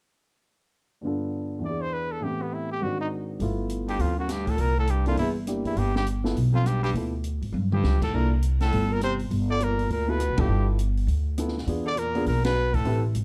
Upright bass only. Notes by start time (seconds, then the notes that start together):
3.40 G1
3.99 D2
4.57 C2
5.16 G1
5.64 D2
5.76 G1
6.36 B1
6.93 D2
7.42 G#1
7.52 G2
7.83 C#2
8.13 C2
8.72 G1
9.31 G1
9.89 D2
10.29 B1
10.38 F#1
10.48 G1
11.07 D2
11.66 E2
12.26 B1
12.85 A1
13.15 G#1